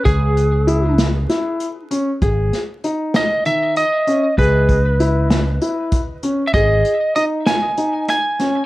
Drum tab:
HH |xxxxxxx|xxxxxxx|xxxxxxx|xxxxxxx|
SD |---oo--|-o-o---|---o---|---o-oo|
BD |o------|o------|oo---o-|o------|